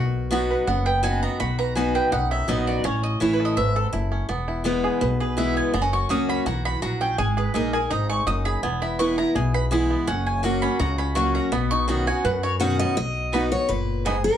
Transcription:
Already playing: upright bass B1, steel-string acoustic guitar B2, five-string banjo F#4, mandolin A#4
0.31 steel-string acoustic guitar F#3 B3 D#4 F#4, five-string banjo B3
0.51 five-string banjo B4
0.67 upright bass F#1, steel-string acoustic guitar F#2, five-string banjo B3, mandolin F#5
0.86 five-string banjo B4, mandolin G5
1.03 steel-string acoustic guitar F#3 B3 D#4 F#4, five-string banjo F#4, mandolin G#5
1.23 five-string banjo B3, mandolin A#5
1.40 upright bass B1, steel-string acoustic guitar B2, five-string banjo F#4, mandolin B5
1.59 five-string banjo B4, mandolin A#5
1.75 steel-string acoustic guitar F#3 B3 D#4 F#4, five-string banjo F#4, mandolin G#5
1.95 five-string banjo B4, mandolin G5
2.12 upright bass B1, steel-string acoustic guitar F#2, five-string banjo D#4, mandolin F#5
2.31 five-string banjo F#3, mandolin E5
2.48 upright bass A#1, steel-string acoustic guitar F#3 B3 D#4 F#4, five-string banjo B3, mandolin D#5
2.67 five-string banjo F#4, mandolin D5
2.84 upright bass A1, steel-string acoustic guitar A2, five-string banjo C#4, mandolin C#5
3.03 mandolin D#5
3.20 upright bass A1, steel-string acoustic guitar E3 A3 C#4 E4, five-string banjo C#4, mandolin C#5
3.33 mandolin B4
3.40 five-string banjo A4
3.45 mandolin D#5
3.57 upright bass G#1, steel-string acoustic guitar G#2, five-string banjo B4, mandolin E5
3.76 five-string banjo A4, mandolin A4
3.93 upright bass F#1, steel-string acoustic guitar F#2, five-string banjo E4
4.12 five-string banjo C#4
4.29 upright bass E1, steel-string acoustic guitar E2, five-string banjo B3
4.48 five-string banjo E4
4.64 steel-string acoustic guitar E3 G#3 B3 E4, five-string banjo B3
4.84 five-string banjo G#4
5.01 upright bass B1, steel-string acoustic guitar B2, five-string banjo B4
5.20 five-string banjo G#4, mandolin B4
5.37 steel-string acoustic guitar E3 G#3 B3 E4, five-string banjo E4, mandolin E5
5.57 five-string banjo B3, mandolin G#5
5.74 upright bass F#1, steel-string acoustic guitar F#2, five-string banjo B3, mandolin A#5
5.82 five-string banjo C#4
5.93 five-string banjo F#4, mandolin C#6
6.09 upright bass C#2, steel-string acoustic guitar F#3 A#3 C#4 F#4, five-string banjo F#4, mandolin D#6
6.29 five-string banjo F#4, mandolin B5
6.46 upright bass B1, steel-string acoustic guitar E3, five-string banjo F#4, mandolin A#5
6.65 five-string banjo F#4, mandolin B5
6.82 upright bass A#1, steel-string acoustic guitar F#3, five-string banjo F#4, mandolin A#5
7.01 five-string banjo C#4, mandolin G5
7.18 upright bass G#1, steel-string acoustic guitar G#3, five-string banjo G#4, mandolin G#5
7.37 five-string banjo G#4, mandolin B4
7.54 upright bass A#1, steel-string acoustic guitar G#3 A#3 D#4 A#4, five-string banjo G#4, mandolin D#5
7.73 steel-string acoustic guitar D#4 A#4, five-string banjo G#4, mandolin G#5
7.90 upright bass G#1, steel-string acoustic guitar G#2, five-string banjo D#4, mandolin A#5
8.09 five-string banjo G#3, mandolin C#6
8.27 upright bass F#1, steel-string acoustic guitar F#2, five-string banjo D#4, mandolin D#6
8.45 five-string banjo G#4, mandolin B5
8.63 upright bass E1, steel-string acoustic guitar E2, five-string banjo B3, mandolin G#5
8.82 five-string banjo E4, mandolin B5
8.99 steel-string acoustic guitar E3 G#3 B3 E4, five-string banjo B4, mandolin C#6
9.18 steel-string acoustic guitar B3 E4, five-string banjo E4, mandolin A#5
9.35 upright bass B1, steel-string acoustic guitar B2, five-string banjo G#4, mandolin G#5
9.54 five-string banjo B4, mandolin B5
9.71 steel-string acoustic guitar E3 G#3 B3 E4, five-string banjo G#4
9.90 five-string banjo B3
10.07 upright bass F#1, steel-string acoustic guitar F#2, five-string banjo C#4, mandolin F#5
10.26 mandolin G#5
10.43 steel-string acoustic guitar F#3 A#3 C#4 F#4, five-string banjo F#4, mandolin A#5
10.62 five-string banjo C#4, mandolin B5
10.79 upright bass C#2, steel-string acoustic guitar C#3, five-string banjo F#4, mandolin A#5
10.98 five-string banjo C#4, mandolin B5
11.15 steel-string acoustic guitar F#3 A#3 C#4 F#4, five-string banjo F#4, mandolin C#6
11.35 five-string banjo F#4, mandolin A#5
11.52 upright bass B1, steel-string acoustic guitar B2, five-string banjo B3, mandolin B5
11.71 five-string banjo D#4, mandolin C#6
11.88 steel-string acoustic guitar B2 D#3 C#4 F#4, five-string banjo B3, mandolin A#5
12.07 steel-string acoustic guitar C#4 F#4, five-string banjo F#4, mandolin G#5
12.24 upright bass F#2, steel-string acoustic guitar F#2, five-string banjo B4, mandolin F#5
12.43 five-string banjo F#4, mandolin C#5
12.60 steel-string acoustic guitar B2 D#3 C#4 F#4 F#5, five-string banjo D#4
12.79 five-string banjo B3, steel-string acoustic guitar D#5
12.97 upright bass B1, steel-string acoustic guitar B2 D#5
13.32 steel-string acoustic guitar F#3 B3 D#4 F#4, mandolin B3 F#4 D#5 B5, five-string banjo B3 D#4 F#4
13.52 steel-string acoustic guitar D#4 F#4 C#5
13.69 upright bass F#1, steel-string acoustic guitar A#2 B4
14.05 steel-string acoustic guitar G#2 G#4, mandolin B3 F#4 D#5 B5, five-string banjo B3 D#4 F#4
14.24 steel-string acoustic guitar A#4

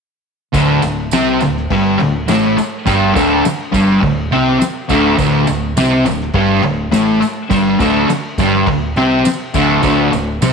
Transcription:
0.53 fingered electric bass D1, distorted electric guitar D2 D3, kick, tambourine, crash
0.82 fingered electric bass D1, distorted electric guitar D2, tambourine, crash
1.11 fingered electric bass C2, distorted electric guitar C3 C4, snare, tambourine, crash
1.40 fingered electric bass D1, distorted electric guitar D2, tambourine, crash
1.57 snare
1.70 fingered electric bass G1, distorted electric guitar G2 G3, kick, crash
1.99 fingered electric bass D1, distorted electric guitar D2, crash
2.28 fingered electric bass A1, distorted electric guitar A2 A3, snare, tambourine, crash
2.58 muted distorted electric guitar stroke, tambourine, crash
2.86 fingered electric bass G1, distorted electric guitar G2 G3, kick, tambourine, crash
3.14 fingered electric bass D1, distorted electric guitar D2 D3, kick, tambourine, crash
3.45 muted distorted electric guitar stroke, muted fingered electric bass stroke, snare, tambourine, crash
3.72 fingered electric bass G1, distorted electric guitar G2 G3, kick, tambourine, crash
4.01 fingered electric bass D1, distorted electric guitar D2, kick, crash
4.32 fingered electric bass C2, distorted electric guitar C3 C4, crash
4.60 muted distorted electric guitar stroke, snare, tambourine, crash
4.64 muted fingered electric bass stroke
4.89 fingered electric bass D1, distorted electric guitar D2 D3, kick, tambourine, crash
5.17 fingered electric bass D1, distorted electric guitar D2 D3, kick, tambourine, crash
5.47 fingered electric bass D1, distorted electric guitar D2, tambourine, crash
5.77 fingered electric bass C2, distorted electric guitar C3 C4, snare, tambourine, crash
6.05 fingered electric bass D1, distorted electric guitar D2, tambourine, crash
6.21 snare
6.33 fingered electric bass G1, distorted electric guitar G2 G3, kick, crash
6.63 fingered electric bass D1, distorted electric guitar D2, crash
6.91 fingered electric bass A1, distorted electric guitar A2 A3, snare, tambourine, crash
7.21 muted distorted electric guitar stroke, muted fingered electric bass stroke, tambourine, crash
7.50 fingered electric bass G1, distorted electric guitar G2 G3, kick, tambourine, crash
7.80 fingered electric bass D1, distorted electric guitar D2 D3, kick, tambourine, crash
8.09 muted distorted electric guitar stroke, muted fingered electric bass stroke, snare, tambourine, crash
8.38 fingered electric bass G1, distorted electric guitar G2 G3, kick, tambourine, crash
8.54 snare
8.67 fingered electric bass D1, distorted electric guitar D2, kick, crash
8.96 fingered electric bass C2, distorted electric guitar C3 C4, tambourine, crash
9.25 muted fingered electric bass stroke, muted distorted electric guitar stroke, snare, tambourine, crash
9.54 fingered electric bass D1, distorted electric guitar D2 D3, kick, tambourine, crash
9.83 fingered electric bass D1, distorted electric guitar D2 D3, kick, tambourine, crash
10.12 fingered electric bass D1, distorted electric guitar D2, tambourine, crash
10.42 fingered electric bass C2, distorted electric guitar C3 C4, snare, tambourine, crash

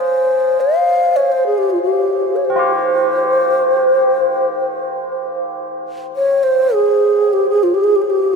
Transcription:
Already playing: tubular bells F4 G#4
0.00 xiao C5
0.60 xiao F5
1.16 xiao C#5
1.32 xiao C5
1.46 xiao G#4
1.58 xiao G4
1.70 xiao F4
1.83 xiao G4
2.36 xiao C#5
2.45 xiao C5
2.50 tubular bells C4
2.56 tubular bells F4 G4
6.16 xiao C#5
6.43 xiao C5
6.74 xiao G#4
7.33 xiao G4
7.49 xiao G#4
7.63 xiao F4
7.74 xiao G4
7.84 xiao G#4
7.96 xiao G4
8.02 xiao G#4
8.10 xiao G4

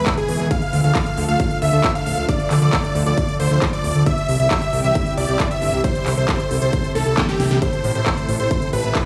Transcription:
Already playing: analog synth pad B2 E3 G#3 E4 G#4, supersaw synth B4
0.06 kick, clap, closed hi-hat
0.17 supersaw synth G#4, closed hi-hat
0.29 analog synth bass E2, open hi-hat
0.40 analog synth bass E2, closed hi-hat
0.51 analog synth pad D3 F3 A3 F4 A4, supersaw synth F5, kick, closed hi-hat
0.62 closed hi-hat
0.73 analog synth bass D2, open hi-hat
0.84 analog synth bass D2, supersaw synth F5, closed hi-hat
0.95 kick, clap, closed hi-hat
1.06 closed hi-hat
1.17 analog synth bass D2, open hi-hat
1.29 analog synth bass D2, supersaw synth F5, closed hi-hat
1.40 kick, closed hi-hat
1.51 closed hi-hat
1.62 analog synth bass D2, supersaw synth E5, open hi-hat
1.73 analog synth bass D2, closed hi-hat
1.84 kick, clap, closed hi-hat
1.95 supersaw synth F5, closed hi-hat
2.06 analog synth bass D1, open hi-hat
2.17 analog synth bass D2, closed hi-hat
2.29 supersaw synth D5, kick, closed hi-hat
2.40 closed hi-hat
2.51 analog synth bass D2, clap, open hi-hat
2.62 analog synth bass D2, supersaw synth D5, closed hi-hat
2.73 kick, clap, closed hi-hat
2.84 closed hi-hat
2.95 analog synth bass D2, open hi-hat
3.06 analog synth bass D2, supersaw synth D5, closed hi-hat
3.18 kick, closed hi-hat
3.29 closed hi-hat
3.40 analog synth bass D2, supersaw synth C5, open hi-hat
3.51 analog synth bass D2, closed hi-hat
3.62 kick, clap, closed hi-hat
3.73 supersaw synth D5, closed hi-hat
3.84 analog synth bass D1, open hi-hat
3.95 analog synth bass D2, closed hi-hat
4.06 analog synth pad C3 E3 G3 E4 G4, supersaw synth E5, kick, closed hi-hat
4.18 closed hi-hat
4.29 analog synth bass C2, open hi-hat
4.40 analog synth bass C2, supersaw synth E5, closed hi-hat
4.51 kick, clap, closed hi-hat
4.62 closed hi-hat
4.73 analog synth bass C2, open hi-hat
4.84 analog synth bass C2, supersaw synth E5, closed hi-hat
4.95 kick, closed hi-hat
5.06 closed hi-hat
5.17 analog synth bass C2, supersaw synth D5, open hi-hat
5.29 analog synth bass C2, closed hi-hat
5.40 kick, clap, closed hi-hat
5.51 supersaw synth E5, closed hi-hat
5.62 analog synth bass G1, open hi-hat
5.73 analog synth bass C2, closed hi-hat
5.84 analog synth pad A4, supersaw synth C5, kick, closed hi-hat
5.95 closed hi-hat
6.06 analog synth bass C2, clap, open hi-hat
6.17 analog synth bass C2, supersaw synth C5, closed hi-hat
6.29 kick, clap, closed hi-hat
6.40 closed hi-hat
6.51 analog synth bass C2, open hi-hat
6.62 analog synth bass C2, supersaw synth C5, closed hi-hat
6.73 kick, closed hi-hat
6.84 closed hi-hat
6.95 analog synth bass C2, supersaw synth A4, snare, open hi-hat
7.06 analog synth bass C2, closed hi-hat
7.18 kick, snare, clap, closed hi-hat
7.29 supersaw synth G4, snare, closed hi-hat
7.40 analog synth bass C2, snare, open hi-hat
7.51 analog synth bass C2, snare, closed hi-hat
7.62 analog synth pad C3 A3 A4, supersaw synth C5, kick, closed hi-hat
7.73 closed hi-hat
7.84 analog synth bass A1, open hi-hat
7.95 analog synth bass A1, supersaw synth C5, closed hi-hat
8.06 kick, clap, closed hi-hat
8.18 closed hi-hat
8.29 analog synth bass A1, open hi-hat
8.40 analog synth bass A1, supersaw synth C5, closed hi-hat
8.51 kick, closed hi-hat
8.62 closed hi-hat
8.73 analog synth bass A1, supersaw synth B4, open hi-hat
8.84 analog synth bass A1, closed hi-hat
8.95 kick, clap, closed hi-hat

